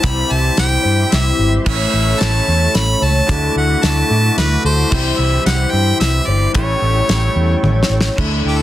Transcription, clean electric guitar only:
0.02 1.64 C3 medium
0.02 1.65 E3 medium
0.02 1.65 G3 medium
0.02 1.65 C4 medium
0.02 1.68 E4 medium
1.65 3.26 A2 medium
1.65 3.27 E3 medium
1.65 3.28 A3 medium
1.65 3.28 C#4 medium
1.65 3.30 E4 loud
3.27 4.89 D3 medium
3.27 4.90 F#3 medium
3.27 4.90 A3 medium
3.27 4.90 D4 medium
3.27 4.93 E4 medium
4.90 6.52 C3 medium
4.90 6.54 E3 loud
4.90 6.53 G3 medium
4.90 6.54 C4 medium
4.90 6.56 E4 medium
6.53 8.15 A2 medium
6.53 8.15 E3 medium
6.53 8.16 G3 medium
6.53 8.17 C#4 medium
6.53 8.17 E4 loud
8.16 8.62 D3 medium
8.16 8.62 A3 medium
8.16 8.62 D4 medium
8.16 8.62 E4 medium

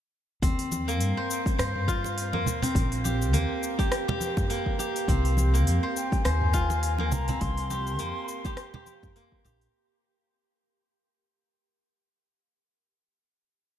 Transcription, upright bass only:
0.42 1.01 D#2 medium
1.01 1.11 G2 medium
1.59 2.46 G2 medium
2.46 2.67 D#2 loud
2.75 3.34 A#1 medium
3.34 3.44 D#2 medium
5.08 5.67 C2 medium
5.67 5.78 F2 medium
6.25 7.13 D#2 medium
7.13 7.33 C2 loud
7.42 8.00 C2 medium
8.00 8.11 F2 medium
9.45 9.66 A#1 medium

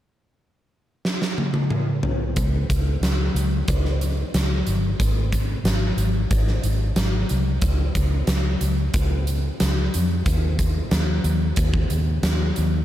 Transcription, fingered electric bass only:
2.37 2.63 C#2 medium
2.69 2.96 C#2 medium
3.01 3.28 C#2 medium
3.34 3.61 C#2 medium
3.68 4.22 C#2 medium
4.34 4.61 C#2 medium
4.67 4.94 G1 medium
5.00 5.53 G#1 medium
5.64 5.91 G#1 medium
5.97 6.24 G#1 medium
6.31 6.58 G#1 medium
6.64 6.91 G#1 medium
6.96 7.23 G#1 medium
7.31 7.57 C2 medium
7.62 7.89 C#2 medium
7.95 8.22 C#2 medium
8.27 8.55 C#2 medium
8.61 8.88 C#2 medium
8.94 9.48 C#2 medium
9.61 9.87 C#2 medium
9.95 10.21 F2 medium
10.26 10.80 D#2 medium
10.91 11.18 D#2 medium
11.24 11.51 D#2 medium
11.57 11.84 D#2 medium
11.91 12.18 D#2 medium
12.23 12.50 D#2 medium
12.58 12.84 D#2 medium

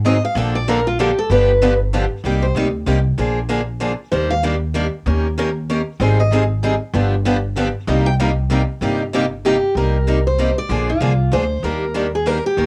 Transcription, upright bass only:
0.00 0.17 G#2 medium
0.35 1.11 A#1 loud
1.30 2.05 G1 loud
2.24 2.49 C2 medium
2.55 2.82 D2 medium
2.86 3.13 C2 medium
3.18 3.93 A#1 medium
4.12 4.87 D#2 medium
5.06 5.81 D#2 medium
6.00 6.75 G#1 loud
6.94 7.69 G1 loud
7.87 8.62 C2 medium
8.81 9.56 G1 medium
9.75 10.50 C2 medium
10.69 10.94 A#1 medium
11.01 11.27 C2 medium
11.32 11.59 D2 medium
11.63 12.38 D#2 medium
12.57 12.66 D#2 medium

